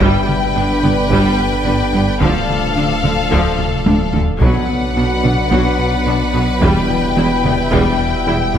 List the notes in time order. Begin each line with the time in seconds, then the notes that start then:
Already playing: G3 G5
0.01 G1 G2 D3 G3 B3 D4 B4 D5, taiko
0.29 G3, taiko mid
0.56 G1 G2 G3 D4
0.83 G1 G2 B3, taiko mid
1.10 G1 G2 G3, taiko
1.39 G2
1.65 G1 G2 B3 D4
1.93 G1 G2 B3
2.20 D1 D2 D3 F3 A3 A4 F5, taiko
2.49 D3, taiko mid
2.76 D2 D3 A3 D4
3.03 D2 D3 F3 A3, taiko mid
3.31 D2 D3 F3, taiko
3.59 D2, taiko mid
3.86 D2 D3 F3 D4, taiko high
4.13 D2 D3 F3 A3, taiko low
4.40 B1 B2 F#3 B3 D4 B4 D5 F#5, taiko
4.69 B3, taiko mid
4.96 B1 B2 B3 D4 F#4
5.24 B1 B2 B3 D4, taiko mid
5.51 B1 B2 F#3 B3, taiko
5.79 B2
6.06 B1 B2 D4
6.34 B1 B2 B3 D4
6.61 E1 E2 E3 G3 E4 E5 G5, taiko
6.89 E3, taiko mid
7.16 E1 E2 E3 B3 E4
7.44 E1 E2 G3 B3, taiko mid
7.72 E1 E2 E3 G3, taiko
7.99 E2
8.26 E1 E2 G3 E4
8.54 E1 E2 G3 B3